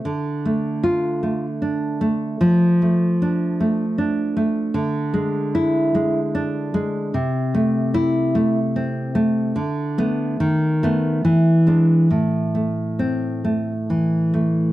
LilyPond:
\new Staff \with { instrumentName = "Nylon-string guitar" } { \time 3/4 \key a \minor \tempo 4 = 74 << { r4 f'4 r4 | r4 d'4 r4 | r4 e'4 r4 | r4 e'4 r4 |
r8 b8 r8 b8 r8 d'8 | r4 c'4 r4 | } \\ { d8 a4 a8 d'8 a8 | f8 a4 a8 d'8 a8 | d8 gis4 gis8 d'8 gis8 | c8 a4 a8 c'8 a8 |
d8 a8 dis8 a8 e8 gis8 | a,8 a4 a8 e8 a8 | } >> }